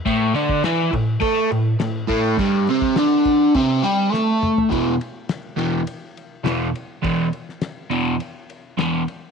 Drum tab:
CC |x-x-x-x-x-x-x-x-|x-x-x-x-x-x-----|----------------|----------------|
RD |----------------|----------------|x-x-x-x-x-x-x-x-|x-x-x-x-x-x-x-x-|
SD |----o-------o---|----o-------o---|----o-------o---|---oo-------o---|
T2 |----------------|--------------o-|----------------|----------------|
FT |----------------|---------------o|----------------|----------------|
BD |o--o--o-o-----o-|o--o--o-o-------|o---------------|o---------------|